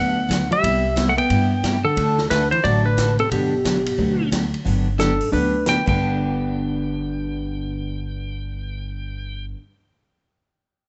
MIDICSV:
0, 0, Header, 1, 6, 480
1, 0, Start_track
1, 0, Key_signature, 1, "major"
1, 0, Tempo, 335383
1, 905, Time_signature, 4, 2, 24, 8
1, 15576, End_track
2, 0, Start_track
2, 0, Title_t, "Electric slide guitar"
2, 0, Program_c, 0, 29
2, 0, Note_on_c, 0, 78, 100
2, 753, Note_on_c, 0, 76, 102
2, 761, Note_off_c, 0, 78, 0
2, 1566, Note_on_c, 0, 78, 74
2, 1599, Note_off_c, 0, 76, 0
2, 1688, Note_off_c, 0, 78, 0
2, 1693, Note_on_c, 0, 79, 113
2, 2642, Note_on_c, 0, 69, 95
2, 2679, Note_off_c, 0, 79, 0
2, 3292, Note_off_c, 0, 69, 0
2, 3297, Note_on_c, 0, 71, 100
2, 3591, Note_off_c, 0, 71, 0
2, 3597, Note_on_c, 0, 72, 92
2, 3775, Note_on_c, 0, 74, 88
2, 3786, Note_off_c, 0, 72, 0
2, 4087, Note_on_c, 0, 71, 93
2, 4091, Note_off_c, 0, 74, 0
2, 4572, Note_off_c, 0, 71, 0
2, 4578, Note_on_c, 0, 69, 80
2, 4749, Note_off_c, 0, 69, 0
2, 4754, Note_on_c, 0, 67, 79
2, 6132, Note_off_c, 0, 67, 0
2, 7151, Note_on_c, 0, 69, 88
2, 7594, Note_off_c, 0, 69, 0
2, 7635, Note_on_c, 0, 71, 79
2, 8077, Note_off_c, 0, 71, 0
2, 8141, Note_on_c, 0, 79, 92
2, 8404, Note_off_c, 0, 79, 0
2, 8428, Note_on_c, 0, 79, 77
2, 13524, Note_off_c, 0, 79, 0
2, 15576, End_track
3, 0, Start_track
3, 0, Title_t, "Steel-string acoustic guitar"
3, 0, Program_c, 1, 25
3, 0, Note_on_c, 1, 50, 53
3, 0, Note_on_c, 1, 54, 53
3, 0, Note_on_c, 1, 59, 59
3, 0, Note_on_c, 1, 62, 54
3, 0, Note_on_c, 1, 67, 62
3, 241, Note_off_c, 1, 50, 0
3, 247, Note_off_c, 1, 54, 0
3, 248, Note_off_c, 1, 59, 0
3, 251, Note_off_c, 1, 62, 0
3, 253, Note_off_c, 1, 67, 0
3, 408, Note_on_c, 1, 54, 66
3, 409, Note_on_c, 1, 50, 67
3, 415, Note_on_c, 1, 59, 59
3, 418, Note_on_c, 1, 62, 72
3, 423, Note_on_c, 1, 67, 71
3, 578, Note_off_c, 1, 54, 0
3, 579, Note_off_c, 1, 50, 0
3, 582, Note_off_c, 1, 59, 0
3, 584, Note_off_c, 1, 62, 0
3, 586, Note_off_c, 1, 67, 0
3, 899, Note_on_c, 1, 48, 49
3, 901, Note_on_c, 1, 55, 50
3, 906, Note_on_c, 1, 59, 57
3, 910, Note_on_c, 1, 64, 55
3, 912, Note_on_c, 1, 67, 59
3, 1206, Note_off_c, 1, 48, 0
3, 1207, Note_off_c, 1, 55, 0
3, 1210, Note_off_c, 1, 59, 0
3, 1212, Note_off_c, 1, 64, 0
3, 1213, Note_off_c, 1, 67, 0
3, 1371, Note_on_c, 1, 48, 80
3, 1373, Note_on_c, 1, 55, 74
3, 1379, Note_on_c, 1, 59, 83
3, 1386, Note_on_c, 1, 64, 85
3, 1391, Note_on_c, 1, 67, 81
3, 1540, Note_off_c, 1, 48, 0
3, 1541, Note_off_c, 1, 55, 0
3, 1544, Note_off_c, 1, 59, 0
3, 1548, Note_off_c, 1, 64, 0
3, 1550, Note_off_c, 1, 67, 0
3, 1860, Note_on_c, 1, 48, 50
3, 1868, Note_on_c, 1, 55, 55
3, 1874, Note_on_c, 1, 59, 61
3, 1878, Note_on_c, 1, 64, 58
3, 1880, Note_on_c, 1, 67, 63
3, 2167, Note_off_c, 1, 48, 0
3, 2171, Note_off_c, 1, 55, 0
3, 2174, Note_off_c, 1, 59, 0
3, 2176, Note_off_c, 1, 64, 0
3, 2177, Note_off_c, 1, 67, 0
3, 2337, Note_on_c, 1, 48, 65
3, 2346, Note_on_c, 1, 55, 69
3, 2349, Note_on_c, 1, 64, 68
3, 2350, Note_on_c, 1, 59, 66
3, 2356, Note_on_c, 1, 67, 76
3, 2503, Note_off_c, 1, 48, 0
3, 2508, Note_off_c, 1, 55, 0
3, 2509, Note_off_c, 1, 64, 0
3, 2510, Note_off_c, 1, 59, 0
3, 2513, Note_off_c, 1, 67, 0
3, 2804, Note_on_c, 1, 50, 55
3, 2814, Note_on_c, 1, 57, 58
3, 2821, Note_on_c, 1, 62, 59
3, 2829, Note_on_c, 1, 66, 60
3, 2833, Note_on_c, 1, 69, 68
3, 3119, Note_off_c, 1, 50, 0
3, 3124, Note_off_c, 1, 57, 0
3, 3128, Note_off_c, 1, 62, 0
3, 3131, Note_off_c, 1, 66, 0
3, 3133, Note_off_c, 1, 69, 0
3, 3295, Note_on_c, 1, 50, 73
3, 3302, Note_on_c, 1, 57, 82
3, 3302, Note_on_c, 1, 62, 75
3, 3309, Note_on_c, 1, 66, 77
3, 3315, Note_on_c, 1, 69, 83
3, 3462, Note_off_c, 1, 50, 0
3, 3466, Note_off_c, 1, 57, 0
3, 3466, Note_off_c, 1, 62, 0
3, 3470, Note_off_c, 1, 66, 0
3, 3472, Note_off_c, 1, 69, 0
3, 3772, Note_on_c, 1, 50, 56
3, 3781, Note_on_c, 1, 57, 60
3, 3785, Note_on_c, 1, 62, 61
3, 3792, Note_on_c, 1, 66, 56
3, 3798, Note_on_c, 1, 69, 52
3, 4083, Note_off_c, 1, 50, 0
3, 4087, Note_off_c, 1, 57, 0
3, 4089, Note_off_c, 1, 62, 0
3, 4093, Note_off_c, 1, 66, 0
3, 4096, Note_off_c, 1, 69, 0
3, 4250, Note_on_c, 1, 50, 63
3, 4253, Note_on_c, 1, 57, 64
3, 4258, Note_on_c, 1, 62, 66
3, 4268, Note_on_c, 1, 66, 76
3, 4272, Note_on_c, 1, 69, 78
3, 4420, Note_off_c, 1, 50, 0
3, 4421, Note_off_c, 1, 57, 0
3, 4424, Note_off_c, 1, 62, 0
3, 4428, Note_off_c, 1, 66, 0
3, 4431, Note_off_c, 1, 69, 0
3, 4736, Note_on_c, 1, 50, 55
3, 4743, Note_on_c, 1, 54, 61
3, 4748, Note_on_c, 1, 59, 58
3, 4750, Note_on_c, 1, 62, 58
3, 4760, Note_on_c, 1, 67, 60
3, 5045, Note_off_c, 1, 50, 0
3, 5048, Note_off_c, 1, 54, 0
3, 5051, Note_off_c, 1, 59, 0
3, 5052, Note_off_c, 1, 62, 0
3, 5057, Note_off_c, 1, 67, 0
3, 5218, Note_on_c, 1, 50, 77
3, 5224, Note_on_c, 1, 54, 70
3, 5232, Note_on_c, 1, 59, 72
3, 5238, Note_on_c, 1, 67, 92
3, 5240, Note_on_c, 1, 62, 84
3, 5383, Note_off_c, 1, 50, 0
3, 5387, Note_off_c, 1, 54, 0
3, 5390, Note_off_c, 1, 59, 0
3, 5393, Note_off_c, 1, 67, 0
3, 5394, Note_off_c, 1, 62, 0
3, 5687, Note_on_c, 1, 50, 56
3, 5696, Note_on_c, 1, 54, 58
3, 5697, Note_on_c, 1, 59, 58
3, 5697, Note_on_c, 1, 62, 57
3, 5709, Note_on_c, 1, 67, 56
3, 6000, Note_off_c, 1, 50, 0
3, 6004, Note_off_c, 1, 54, 0
3, 6005, Note_off_c, 1, 59, 0
3, 6005, Note_off_c, 1, 62, 0
3, 6011, Note_off_c, 1, 67, 0
3, 6173, Note_on_c, 1, 50, 68
3, 6177, Note_on_c, 1, 54, 70
3, 6184, Note_on_c, 1, 59, 65
3, 6190, Note_on_c, 1, 62, 66
3, 6192, Note_on_c, 1, 67, 71
3, 6341, Note_off_c, 1, 50, 0
3, 6343, Note_off_c, 1, 54, 0
3, 6346, Note_off_c, 1, 59, 0
3, 6349, Note_off_c, 1, 62, 0
3, 6350, Note_off_c, 1, 67, 0
3, 6649, Note_on_c, 1, 50, 55
3, 6659, Note_on_c, 1, 59, 60
3, 6660, Note_on_c, 1, 54, 58
3, 6669, Note_on_c, 1, 62, 57
3, 6672, Note_on_c, 1, 67, 54
3, 6961, Note_off_c, 1, 50, 0
3, 6966, Note_off_c, 1, 54, 0
3, 6966, Note_off_c, 1, 59, 0
3, 6971, Note_off_c, 1, 62, 0
3, 6972, Note_off_c, 1, 67, 0
3, 7132, Note_on_c, 1, 50, 74
3, 7142, Note_on_c, 1, 54, 77
3, 7150, Note_on_c, 1, 59, 77
3, 7156, Note_on_c, 1, 62, 73
3, 7160, Note_on_c, 1, 67, 91
3, 7300, Note_off_c, 1, 50, 0
3, 7305, Note_off_c, 1, 54, 0
3, 7309, Note_off_c, 1, 59, 0
3, 7312, Note_off_c, 1, 62, 0
3, 7314, Note_off_c, 1, 67, 0
3, 7624, Note_on_c, 1, 50, 56
3, 7634, Note_on_c, 1, 54, 56
3, 7634, Note_on_c, 1, 59, 54
3, 7639, Note_on_c, 1, 62, 60
3, 7644, Note_on_c, 1, 67, 60
3, 7928, Note_off_c, 1, 50, 0
3, 7933, Note_off_c, 1, 54, 0
3, 7933, Note_off_c, 1, 59, 0
3, 7935, Note_off_c, 1, 62, 0
3, 7938, Note_off_c, 1, 67, 0
3, 8106, Note_on_c, 1, 50, 61
3, 8108, Note_on_c, 1, 54, 65
3, 8117, Note_on_c, 1, 59, 72
3, 8118, Note_on_c, 1, 62, 72
3, 8129, Note_on_c, 1, 67, 67
3, 8267, Note_off_c, 1, 50, 0
3, 8268, Note_off_c, 1, 54, 0
3, 8273, Note_off_c, 1, 59, 0
3, 8273, Note_off_c, 1, 62, 0
3, 8279, Note_off_c, 1, 67, 0
3, 8386, Note_on_c, 1, 43, 71
3, 8399, Note_on_c, 1, 50, 73
3, 8423, Note_on_c, 1, 59, 71
3, 8431, Note_on_c, 1, 62, 76
3, 8440, Note_on_c, 1, 67, 71
3, 13667, Note_off_c, 1, 43, 0
3, 13679, Note_off_c, 1, 50, 0
3, 13704, Note_off_c, 1, 59, 0
3, 13711, Note_off_c, 1, 62, 0
3, 13721, Note_off_c, 1, 67, 0
3, 15576, End_track
4, 0, Start_track
4, 0, Title_t, "Hollow-body jazz guitar"
4, 0, Program_c, 2, 26
4, 0, Note_on_c, 2, 59, 83
4, 670, Note_off_c, 2, 59, 0
4, 730, Note_on_c, 2, 55, 82
4, 1506, Note_off_c, 2, 55, 0
4, 1554, Note_on_c, 2, 57, 74
4, 1675, Note_off_c, 2, 57, 0
4, 1682, Note_on_c, 2, 59, 92
4, 2588, Note_off_c, 2, 59, 0
4, 2645, Note_on_c, 2, 50, 80
4, 3259, Note_off_c, 2, 50, 0
4, 3305, Note_on_c, 2, 50, 79
4, 3586, Note_off_c, 2, 50, 0
4, 3607, Note_on_c, 2, 52, 73
4, 3768, Note_off_c, 2, 52, 0
4, 3774, Note_on_c, 2, 54, 89
4, 4084, Note_off_c, 2, 54, 0
4, 4084, Note_on_c, 2, 50, 74
4, 4565, Note_on_c, 2, 48, 71
4, 4566, Note_off_c, 2, 50, 0
4, 4732, Note_off_c, 2, 48, 0
4, 4738, Note_on_c, 2, 47, 67
4, 6124, Note_off_c, 2, 47, 0
4, 7142, Note_on_c, 2, 62, 61
4, 7590, Note_off_c, 2, 62, 0
4, 7618, Note_on_c, 2, 62, 79
4, 8068, Note_off_c, 2, 62, 0
4, 8102, Note_on_c, 2, 71, 79
4, 8383, Note_off_c, 2, 71, 0
4, 8390, Note_on_c, 2, 59, 63
4, 13613, Note_off_c, 2, 59, 0
4, 15576, End_track
5, 0, Start_track
5, 0, Title_t, "Upright bass"
5, 0, Program_c, 3, 32
5, 0, Note_on_c, 3, 38, 86
5, 718, Note_off_c, 3, 38, 0
5, 910, Note_on_c, 3, 36, 74
5, 1677, Note_off_c, 3, 36, 0
5, 1861, Note_on_c, 3, 43, 91
5, 2631, Note_off_c, 3, 43, 0
5, 2821, Note_on_c, 3, 38, 80
5, 3591, Note_off_c, 3, 38, 0
5, 3789, Note_on_c, 3, 33, 86
5, 4556, Note_off_c, 3, 33, 0
5, 4746, Note_on_c, 3, 31, 77
5, 5513, Note_off_c, 3, 31, 0
5, 5701, Note_on_c, 3, 38, 91
5, 6470, Note_off_c, 3, 38, 0
5, 6668, Note_on_c, 3, 31, 77
5, 7434, Note_off_c, 3, 31, 0
5, 7630, Note_on_c, 3, 38, 77
5, 8253, Note_off_c, 3, 38, 0
5, 8411, Note_on_c, 3, 31, 84
5, 13634, Note_off_c, 3, 31, 0
5, 15576, End_track
6, 0, Start_track
6, 0, Title_t, "Drums"
6, 432, Note_on_c, 9, 36, 26
6, 438, Note_on_c, 9, 38, 68
6, 438, Note_on_c, 9, 44, 55
6, 438, Note_on_c, 9, 51, 67
6, 575, Note_off_c, 9, 36, 0
6, 581, Note_off_c, 9, 38, 0
6, 581, Note_off_c, 9, 44, 0
6, 581, Note_off_c, 9, 51, 0
6, 741, Note_on_c, 9, 51, 43
6, 884, Note_off_c, 9, 51, 0
6, 910, Note_on_c, 9, 36, 21
6, 916, Note_on_c, 9, 51, 74
6, 1053, Note_off_c, 9, 36, 0
6, 1059, Note_off_c, 9, 51, 0
6, 1385, Note_on_c, 9, 36, 20
6, 1387, Note_on_c, 9, 38, 61
6, 1387, Note_on_c, 9, 44, 56
6, 1387, Note_on_c, 9, 51, 67
6, 1529, Note_off_c, 9, 36, 0
6, 1530, Note_off_c, 9, 38, 0
6, 1530, Note_off_c, 9, 44, 0
6, 1530, Note_off_c, 9, 51, 0
6, 1688, Note_on_c, 9, 51, 48
6, 1832, Note_off_c, 9, 51, 0
6, 1860, Note_on_c, 9, 51, 62
6, 1863, Note_on_c, 9, 36, 20
6, 2003, Note_off_c, 9, 51, 0
6, 2007, Note_off_c, 9, 36, 0
6, 2342, Note_on_c, 9, 36, 20
6, 2343, Note_on_c, 9, 38, 71
6, 2343, Note_on_c, 9, 44, 59
6, 2343, Note_on_c, 9, 51, 65
6, 2485, Note_off_c, 9, 36, 0
6, 2486, Note_off_c, 9, 38, 0
6, 2486, Note_off_c, 9, 44, 0
6, 2486, Note_off_c, 9, 51, 0
6, 2820, Note_on_c, 9, 51, 66
6, 2822, Note_on_c, 9, 36, 27
6, 2963, Note_off_c, 9, 51, 0
6, 2965, Note_off_c, 9, 36, 0
6, 3119, Note_on_c, 9, 38, 53
6, 3262, Note_off_c, 9, 38, 0
6, 3302, Note_on_c, 9, 38, 71
6, 3302, Note_on_c, 9, 44, 49
6, 3302, Note_on_c, 9, 51, 72
6, 3306, Note_on_c, 9, 36, 24
6, 3445, Note_off_c, 9, 38, 0
6, 3445, Note_off_c, 9, 44, 0
6, 3445, Note_off_c, 9, 51, 0
6, 3449, Note_off_c, 9, 36, 0
6, 3608, Note_on_c, 9, 51, 44
6, 3751, Note_off_c, 9, 51, 0
6, 3788, Note_on_c, 9, 36, 25
6, 3789, Note_on_c, 9, 51, 55
6, 3931, Note_off_c, 9, 36, 0
6, 3932, Note_off_c, 9, 51, 0
6, 4261, Note_on_c, 9, 38, 66
6, 4261, Note_on_c, 9, 44, 55
6, 4261, Note_on_c, 9, 51, 60
6, 4267, Note_on_c, 9, 36, 22
6, 4404, Note_off_c, 9, 38, 0
6, 4404, Note_off_c, 9, 44, 0
6, 4404, Note_off_c, 9, 51, 0
6, 4410, Note_off_c, 9, 36, 0
6, 4562, Note_on_c, 9, 51, 42
6, 4705, Note_off_c, 9, 51, 0
6, 4744, Note_on_c, 9, 51, 64
6, 4746, Note_on_c, 9, 36, 19
6, 4887, Note_off_c, 9, 51, 0
6, 4889, Note_off_c, 9, 36, 0
6, 5226, Note_on_c, 9, 36, 22
6, 5227, Note_on_c, 9, 38, 68
6, 5227, Note_on_c, 9, 44, 55
6, 5227, Note_on_c, 9, 51, 68
6, 5369, Note_off_c, 9, 36, 0
6, 5370, Note_off_c, 9, 38, 0
6, 5370, Note_off_c, 9, 44, 0
6, 5370, Note_off_c, 9, 51, 0
6, 5529, Note_on_c, 9, 51, 75
6, 5672, Note_off_c, 9, 51, 0
6, 5705, Note_on_c, 9, 36, 20
6, 5848, Note_off_c, 9, 36, 0
6, 6185, Note_on_c, 9, 38, 72
6, 6185, Note_on_c, 9, 44, 57
6, 6185, Note_on_c, 9, 51, 67
6, 6186, Note_on_c, 9, 36, 19
6, 6328, Note_off_c, 9, 38, 0
6, 6328, Note_off_c, 9, 44, 0
6, 6328, Note_off_c, 9, 51, 0
6, 6329, Note_off_c, 9, 36, 0
6, 6496, Note_on_c, 9, 51, 41
6, 6639, Note_off_c, 9, 51, 0
6, 6669, Note_on_c, 9, 36, 36
6, 6675, Note_on_c, 9, 46, 46
6, 6812, Note_off_c, 9, 36, 0
6, 6818, Note_off_c, 9, 46, 0
6, 7148, Note_on_c, 9, 38, 68
6, 7148, Note_on_c, 9, 42, 53
6, 7291, Note_off_c, 9, 38, 0
6, 7291, Note_off_c, 9, 42, 0
6, 7449, Note_on_c, 9, 46, 39
6, 7592, Note_off_c, 9, 46, 0
6, 7628, Note_on_c, 9, 36, 31
6, 7629, Note_on_c, 9, 46, 40
6, 7771, Note_off_c, 9, 36, 0
6, 7772, Note_off_c, 9, 46, 0
6, 8101, Note_on_c, 9, 38, 65
6, 8101, Note_on_c, 9, 42, 47
6, 8244, Note_off_c, 9, 38, 0
6, 8244, Note_off_c, 9, 42, 0
6, 8404, Note_on_c, 9, 49, 50
6, 8410, Note_on_c, 9, 36, 53
6, 8547, Note_off_c, 9, 49, 0
6, 8554, Note_off_c, 9, 36, 0
6, 15576, End_track
0, 0, End_of_file